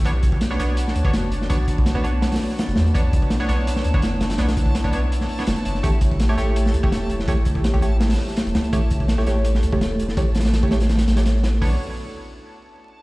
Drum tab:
HH |x---x---x---x---x---x---x---x---|x---x---x---x---x-xxo---x-x-x-x-|x---x---x---x---x---x---x---x-x-|x-x-x---x---x---x---o---x-x-x---|
SD |--------o-o-o-----o-----o-----o-|--------o-------o-oo--o-o---o---|--------o-o-o-----o-----o---o-o-|o-o-----o---------o---o-o-----o-|
BD |o---o-o---------------o---------|o---o-o---o---------------------|o---o-o---------------o---------|----o-o---o---------------------|

HH |x---x---x---x---x---x---x---x---|x---x---x---x---x-xxo---x-x-x-x-|x---x---x---x---x---x---x---x---|x---xxx-x---x-x-x-x-x-x-x---x---|
SD |--------o-o-o-----o-----o-----o-|--------o-------o-oo--o-o---o---|--------o-o-o-----o-----o-----o-|----ooo-o---o-o-o-o-o-o-o-o-o-o-|
BD |o---o-o---------------o---------|o---o-o---o---------------------|o---o-o---------------o---------|o---------o---------------------|

HH |o-------------------------------|
SD |--------------------------------|
BD |o-------------------------------|